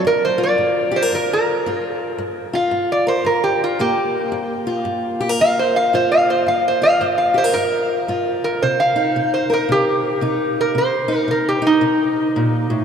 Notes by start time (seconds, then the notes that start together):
0.04 G2 A#4
0.25 C5
0.38 F4
0.43 D5
0.58 G2
0.91 G4
0.96 C5
1.02 A#4
1.12 G2 A#4
1.33 A#4
1.66 G2 F4
2.18 G2
2.53 F4 F5
2.71 G2
2.92 D5
3.07 A#4 C5
3.25 G2 A#4
3.44 G4
3.64 F4
3.79 G2 A#3 G4
4.32 G2
4.67 F4
4.85 G2
5.21 G4
5.29 A#4
5.39 G2 F5
5.59 C5
5.76 F5
5.93 G2 F4 C5
6.12 F5
6.30 C5
6.47 G2 F5
6.68 C5
6.82 F4 F5
7.01 G2 C5
7.18 F5
7.34 G4 C5
7.44 A#4
7.53 G2 A#4
8.08 G2 F4
8.44 A#4
8.62 C3 C5
8.80 F5
8.96 D#4
9.16 C3
9.34 C5
9.50 A#4
9.69 C3 G4
10.21 C3 D#4
10.61 A#4
10.75 C3 C5
11.08 D#4
11.17 A#4
11.28 C3 A#4
11.49 G4
11.62 D#4
11.67 D#4
11.81 C3
12.36 A#2
12.70 A2